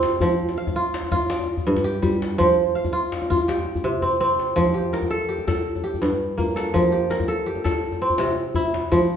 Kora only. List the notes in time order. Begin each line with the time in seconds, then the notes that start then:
Already playing: C3 C4 F4 G4
0.22 F3
0.58 F5
0.76 F4
1.12 F4
1.30 D5
1.67 G2
1.84 G4
2.02 G3
2.38 F3 C5
2.75 F5
2.93 F4
3.30 F4
3.48 G4
3.84 C3
4.02 C4
4.20 C4
4.56 F3
4.74 G4
4.93 A#4
5.10 A4
5.29 G4
5.47 A4
5.84 G4
6.02 G2
6.38 A#3
6.56 A4
6.74 F3
6.92 G4
7.10 A#4
7.28 A4
7.46 G4
7.64 A4
8.02 C4
8.19 C3
8.55 E4
8.92 F3